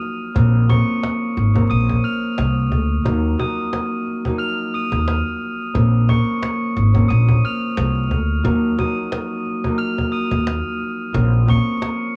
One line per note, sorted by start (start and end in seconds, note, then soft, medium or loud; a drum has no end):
0.00 0.34 F3 loud
0.00 0.41 F#3 medium
0.00 0.36 A#3 medium
0.00 1.58 D#4 loud
0.00 cajon slap soft
0.34 0.79 A#1 loud
0.34 0.68 C#3 medium
0.34 0.69 F3 medium
0.34 0.67 A#3 medium
0.34 0.68 C4 loud
0.34 cajon bass loud
0.69 3.10 C#3 loud
0.69 1.53 F3 medium
0.69 1.55 A#3 medium
0.69 1.56 C4 loud
0.69 1.67 C#6 medium
0.69 1.67 C#7 medium
0.69 cajon bass loud
1.03 cajon slap loud
1.37 1.65 G#1 medium
1.37 cajon slap soft
1.54 3.02 F3 medium
1.54 3.05 A#3 medium
1.54 4.56 C4 loud
1.54 4.43 C#4 loud
1.54 cajon bass medium
1.70 1.98 A#1 loud
1.70 2.00 D#6 medium
1.70 2.01 D#7 medium
1.70 cajon slap soft
1.89 cajon bass medium
2.04 2.34 F6 medium
2.04 2.35 F7 medium
2.04 cajon slap soft
2.38 2.72 C2 loud
2.38 cajon slap loud
2.72 3.00 D2 loud
2.72 cajon bass medium
3.04 3.33 D#2 loud
3.04 3.36 F3 loud
3.04 3.37 F#3 medium
3.04 3.37 A#3 medium
3.04 3.37 D#4 loud
3.04 cajon bass loud
3.38 4.23 F3 medium
3.38 4.24 F#3 medium
3.38 4.26 A#3 medium
3.38 4.27 D#4 loud
3.38 4.37 D#6 medium
3.38 4.37 D#7 medium
3.38 cajon bass loud
3.73 cajon slap loud
4.07 cajon slap soft
4.25 5.73 F3 loud
4.25 5.80 F#3 medium
4.25 5.75 A#3 medium
4.25 6.98 D#4 loud
4.25 cajon bass loud
4.38 4.70 F6 medium
4.38 4.70 F7 medium
4.38 cajon slap soft
4.74 5.04 D#6 medium
4.74 5.05 D#7 medium
4.74 cajon slap soft
4.92 5.20 D#2 medium
4.92 cajon bass loud
4.92 cajon slap soft
5.08 cajon slap loud
5.42 cajon slap soft
5.74 6.18 A#1 loud
5.74 6.07 C#3 medium
5.74 6.08 F3 medium
5.74 6.07 A#3 medium
5.74 6.07 C4 loud
5.74 cajon bass loud
6.09 8.50 C#3 medium
6.09 6.93 F3 medium
6.09 6.94 A#3 medium
6.09 6.95 C4 loud
6.09 7.06 C#6 medium
6.09 7.07 C#7 medium
6.09 cajon bass loud
6.43 finger snap medium
6.43 cajon slap loud
6.76 7.04 G#1 medium
6.76 cajon slap soft
6.93 8.42 F3 medium
6.93 8.44 A#3 medium
6.93 9.96 C4 loud
6.93 9.83 C#4 loud
6.93 cajon bass loud
7.08 7.38 A#1 loud
7.08 7.39 D#6 medium
7.08 7.40 D#7 medium
7.08 cajon slap soft
7.29 cajon bass medium
7.45 7.75 F6 medium
7.45 7.75 F7 medium
7.45 cajon slap soft
7.77 8.11 C2 loud
7.77 finger snap medium
7.77 cajon slap loud
8.11 8.39 D2 loud
8.11 cajon bass medium
8.43 8.73 D#2 loud
8.43 8.76 F3 loud
8.43 8.76 F#3 medium
8.43 8.76 A#3 loud
8.43 8.77 D#4 loud
8.43 cajon bass loud
8.77 9.63 F3 medium
8.77 9.64 F#3 medium
8.77 9.65 A#3 medium
8.77 9.66 D#4 loud
8.77 9.76 D#6 medium
8.77 9.76 D#7 medium
8.77 cajon bass loud
9.12 finger snap medium
9.12 cajon slap loud
9.46 cajon slap soft
9.64 11.11 F3 loud
9.64 11.19 F#3 medium
9.64 11.13 A#3 medium
9.64 12.16 D#4 loud
9.64 cajon bass medium
9.78 10.09 F6 loud
9.78 10.09 F7 medium
9.78 cajon slap soft
9.98 cajon bass medium
10.12 10.43 D#6 medium
10.12 10.43 D#7 medium
10.12 cajon slap soft
10.31 10.59 D#2 medium
10.31 cajon bass loud
10.47 finger snap medium
10.47 cajon slap loud
10.81 cajon slap soft
11.13 11.58 A#1 loud
11.13 11.44 F3 medium
11.13 11.45 A#3 medium
11.13 11.46 C4 medium
11.13 11.46 C#4 loud
11.13 cajon bass loud
11.46 12.16 F3 loud
11.46 12.16 A#3 medium
11.46 12.16 C4 medium
11.46 12.16 C#4 loud
11.46 12.16 C#6 medium
11.46 cajon bass loud
11.50 12.16 C#7 medium
11.82 finger snap medium
11.82 cajon slap loud